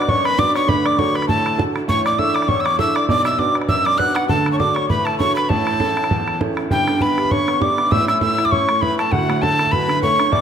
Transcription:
Already playing: B1 D6
0.02 bodhran
0.08 F#2 C#5 C#6, bodhran
0.17 bodhran
0.25 B4 B5, bodhran
0.38 D4 F#4 B4 D5 D6, bodhran
0.55 C#5 C#6, bodhran
0.67 D2 D3 B4 B5, bodhran
0.85 D5 D6, bodhran
0.92 bodhran
0.98 D4 F#4 A4 C#5 C#6, bodhran
1.08 bodhran
1.14 B4 B5, bodhran
1.22 bodhran
1.28 A2 A4 A5, bodhran
1.38 bodhran
1.46 bodhran
1.57 D4 F#4 A4, bodhran
1.76 bodhran
1.88 A1 A2 C#5 C#6, bodhran
2.05 D5 D6, bodhran
2.12 bodhran
2.18 D4 E4 A4 E5 E6, bodhran
2.27 bodhran
2.35 D5 D6, bodhran
2.42 bodhran
2.48 E2 C#5 C#6, bodhran
2.58 E6, bodhran
2.65 D6, bodhran
2.78 D4 E4 A4 E5 E6, bodhran
2.95 D5 D6, bodhran
3.09 B1 B2 D5 D6, bodhran
3.25 E5 E6, bodhran
3.32 bodhran
3.38 D4 F#4 B4 D5 D6, bodhran
3.47 bodhran
3.55 bodhran
3.62 bodhran
3.69 F#2 E5 E6, bodhran
3.78 bodhran
3.85 D5 D6, bodhran
3.98 D4 F#4 B4 F#5 F#6, bodhran
4.15 F#4 F#5, bodhran
4.29 D2 D3 A4 A5, bodhran
4.46 bodhran
4.52 C#5 C#6, bodhran
4.59 D4 F#4 A4 D5 D6, bodhran
4.68 bodhran
4.75 C#5 C#6, bodhran
4.89 A2 B4 B5, bodhran
4.99 bodhran
5.05 A4 A5, bodhran
5.19 D4 F#4 A4 C#5 C#6, bodhran
5.35 B4 B5, bodhran
5.49 A1 A2 A4 A5, bodhran
5.67 bodhran
5.74 bodhran
5.80 C#4 E4 A4, bodhran
5.89 bodhran
5.97 bodhran
6.04 bodhran
6.11 E2, bodhran
6.20 bodhran
6.28 bodhran
6.40 C#4 E4 A4, bodhran
6.57 bodhran
6.71 G1 G2 G4 G5, bodhran
6.87 D3, bodhran
7.01 B3 B4 B5, bodhran
7.18 G4, bodhran
7.25 bodhran
7.31 D4 C#5 C#6, bodhran
7.47 B3, bodhran
7.60 G4 D5 D6, bodhran
7.78 B3, bodhran
7.91 A1 A2 E5 E6, bodhran
8.08 E3 E5 E6, bodhran
8.21 A3 E5 E6, bodhran
8.38 E4, bodhran
8.45 D6, bodhran
8.51 C#4 C#5 C#6, bodhran
8.69 A3, bodhran
8.81 E4 B4 B5, bodhran
8.99 A3 A4 A5, bodhran
9.12 D1 D2 F#4 F#5, bodhran
9.29 A2, bodhran
9.42 D3 A4 A5, bodhran
9.59 A3, bodhran
9.66 bodhran
9.72 F#3 B4 B5, bodhran
9.88 D3, bodhran
10.02 A3 C#5 C#6, bodhran
10.19 D3, bodhran
10.32 G1 G2 D5 D6, bodhran

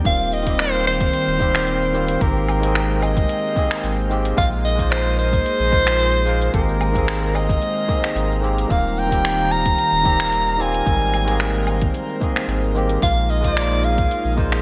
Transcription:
0.04 D#1 D#3 G3 A#3 C4 F4 F5 G5, kick, closed hi-hat, cabasa
0.20 cabasa
0.32 D#5, cabasa
0.43 D#3 G3 A#3, kick, closed hi-hat, cabasa
0.48 C4 G4
0.59 C5, finger snap, closed hi-hat, cabasa
0.74 cabasa
0.87 C5, cabasa
1.00 kick, closed hi-hat, cabasa
1.13 closed hi-hat, cabasa
1.28 D#1, cabasa
1.39 D#3 G3 A#3 C4 G4, kick, cabasa
1.55 finger snap, closed hi-hat, cabasa
1.67 closed hi-hat, cabasa
1.82 cabasa
1.93 D#3 G3 A#3 C4 F4, cabasa
2.08 closed hi-hat, cabasa
2.20 G#1 D#3 G#3 A#3 C4 G4 A#4 C5, kick, closed hi-hat, cabasa
2.36 cabasa
2.49 cabasa, low woodblock
2.60 D#3 G#3 A#3, closed hi-hat, cabasa
2.65 C4 G#4
2.75 finger snap, closed hi-hat, cabasa
2.90 cabasa
3.03 D#5, cabasa, low woodblock
3.17 kick, closed hi-hat, cabasa
3.29 closed hi-hat, cabasa
3.44 cabasa
3.55 D#3 G#3 A#3 C4 G#4, kick, cabasa
3.71 finger snap, closed hi-hat, cabasa
3.84 G#1, closed hi-hat, cabasa
3.98 cabasa
4.09 D#3 G#3 A#3 C4 G4, cabasa
4.25 closed hi-hat, cabasa
4.36 A#1 G#3 A#3 D#4 F4 G#4 A#4 D#5 F5, kick, closed hi-hat, cabasa
4.52 cabasa
4.65 D#5, cabasa
4.75 G#3 A#3 D#4, kick, closed hi-hat, cabasa
4.81 F4 C5
4.92 C5, finger snap, closed hi-hat, cabasa
5.06 cabasa
5.19 C5, cabasa
5.33 kick, closed hi-hat, cabasa
5.46 closed hi-hat, cabasa
5.60 A#1, cabasa
5.71 G#3 A#3 D#4 F4 C5, kick, cabasa
5.87 finger snap, closed hi-hat, cabasa
5.99 closed hi-hat, cabasa
6.14 cabasa
6.25 G#3 A#3 D#4 F4 A#4, cabasa
6.42 closed hi-hat, cabasa
6.52 G#1 D#3 G#3 A#3 C4 G4 A#4 C5 A#5, kick, closed hi-hat, cabasa
6.68 cabasa
6.81 cabasa, low woodblock
6.92 D#3 G#3 A#3, kick, closed hi-hat, cabasa
6.97 C4 G#4
7.08 finger snap, closed hi-hat, cabasa
7.23 cabasa
7.35 D#5, cabasa, low woodblock
7.49 kick, closed hi-hat, cabasa
7.62 closed hi-hat, cabasa
7.77 cabasa
7.87 D#3 G#3 A#3 C4 G#4, kick, cabasa
8.04 finger snap, closed hi-hat, cabasa
8.16 G#1, closed hi-hat, cabasa
8.31 cabasa
8.41 D#3 G#3 A#3 C4 G4, cabasa
8.58 closed hi-hat, cabasa
8.68 D#1 D#3 G3 A#3 C4 F4 F5, kick, closed hi-hat, cabasa
8.72 F5
8.86 cabasa
8.98 G5, cabasa
9.07 D#3 G3 A#3
9.12 C4 G4, kick, closed hi-hat, cabasa
9.25 finger snap, closed hi-hat, cabasa
9.39 cabasa
9.51 A#5, cabasa
9.66 kick, closed hi-hat, cabasa
9.78 closed hi-hat, cabasa
9.92 D#1, cabasa
10.03 D#3 G3 A#3 C4 G4, kick, cabasa
10.20 finger snap, closed hi-hat, cabasa
10.33 closed hi-hat, cabasa
10.47 cabasa
10.57 D#3 G3 A#3 C4 F4, cabasa
10.62 G#5
10.74 closed hi-hat, cabasa
10.85 G#1 D#3 G3 G#3 A#3 C4 A#4 C5, kick, closed hi-hat, cabasa
11.01 cabasa
11.14 cabasa, low woodblock
11.25 D#3 G#3 A#3, closed hi-hat, cabasa
11.30 C4 G#4
11.40 finger snap, closed hi-hat, cabasa
11.55 cabasa
11.67 cabasa, low woodblock
11.82 kick, closed hi-hat, cabasa
11.94 closed hi-hat, cabasa
12.08 cabasa
12.20 D#3 G#3 A#3 C4 G#4, kick, cabasa
12.36 finger snap, closed hi-hat, cabasa
12.48 G#1, closed hi-hat, cabasa
12.63 cabasa
12.74 D#3 G#3 A#3 C4 G4, cabasa
12.89 closed hi-hat, cabasa
13.01 A#1 G#3 A#3 D#4 F4 G#4 A#4 F5, kick, closed hi-hat, cabasa
13.17 cabasa
13.29 D#5, cabasa
13.41 G#3 A#3 D#4, kick, closed hi-hat, cabasa
13.46 F4 C5 D5
13.57 finger snap, closed hi-hat, cabasa
13.71 cabasa
13.84 F5, cabasa
13.98 kick, closed hi-hat, cabasa
14.11 closed hi-hat, cabasa
14.25 A#1, cabasa
14.37 G#3 A#3 D#4 F4 C5, kick, cabasa
14.52 finger snap, closed hi-hat, cabasa

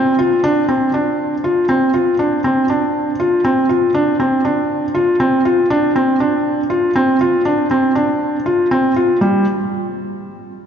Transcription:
Already playing: C4
0.19 F4
0.44 D4
0.69 C4
0.94 D4
1.44 F4
1.69 C4
1.94 F4
2.19 D4
2.44 C4
2.70 D4
3.20 F4
3.45 C4
3.69 F4
3.94 D4
4.20 C4
4.45 D4
4.95 F4
5.20 C4
5.45 F4
5.70 D4
5.96 C4
6.20 D4
6.70 F4
6.96 C4
7.21 F4
7.45 D4
7.71 C4
7.95 D4
8.46 F4
8.71 C4
8.96 F4
9.21 G3

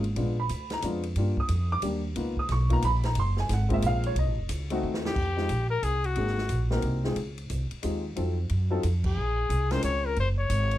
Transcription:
Already playing: G#1
0.04 ride
0.16 A#1 G#3 B3 D4 F4, ride
0.40 B5
0.49 D2, hi-hat pedal, ride
0.70 A#5, snare, ride
0.82 F2 G#3 B3 D4 F4, hi-hat pedal, ride
1.03 ride
1.16 G2 G3 A#3 D4 F4, ride
1.37 D#6, kick
1.49 F2, hi-hat pedal, ride
1.72 D6
1.82 D#2 G3 A#3 D4 G4, hi-hat pedal, ride
2.16 C#2 A#3 B3 D#4 F4, ride
2.37 D#6, kick
2.49 B1 C#6, snare, ride
2.69 A#3 B3 D#4 F4 A#5, kick, ride
2.82 A#1 B5, hi-hat pedal, ride
3.03 A#5, snare, ride
3.15 F#1, ride
3.20 C6
3.37 G#5, snare
3.49 G#1, snare, hi-hat pedal, ride
3.54 F#5
3.69 G#3 A#3 C4 F4, kick, ride
3.74 E5
3.82 A#1, hi-hat pedal, ride
3.87 F5
4.04 C#5, ride
4.15 C2 D#5, ride
4.26 A1
4.38 F1
4.49 C#2, hi-hat pedal, ride
4.70 A3 C4 D#4 F#4, ride
4.83 D#2
4.94 snare
5.05 G4, snare
5.16 F2, kick, crash
5.36 G#3 C4 D#4 F4 G4, snare
5.49 A#1, hi-hat pedal, ride
5.70 A#4
5.82 C2 G#4, hi-hat pedal, ride
6.04 F#4, ride
6.16 G#1 A#3 C4 D#4 F#4 G#4, ride
6.27 snare
6.38 snare
6.49 A#1, hi-hat pedal, ride
6.70 A#3 C4 D#4 F#4 A#4, snare
6.82 C2, ride
7.04 G#3 C4 D#4 F4 G#4, snare
7.16 C#2, ride
7.38 ride
7.50 C2, hi-hat pedal, ride
7.71 muted upright bass stroke, ride
7.83 D#2 G#3 C4 D#4 F4 G4, hi-hat pedal, ride
8.15 F2 F#3 C4 D#4 F4 A4, ride
8.49 F#2, ride
8.70 F#3 C4 D#4 F4 A4
8.83 F2, hi-hat pedal, ride
9.04 G#4, kick, crash
9.17 A#1
9.49 C2, hi-hat pedal, ride
9.71 G#3 C4 C#4 F4 A#4 C5, snare, ride
9.83 C#2 C#5, hi-hat pedal, ride
10.07 A#4
10.16 F#1 C5, ride
10.39 C#5
10.50 G#1, hi-hat pedal, ride
10.71 ride

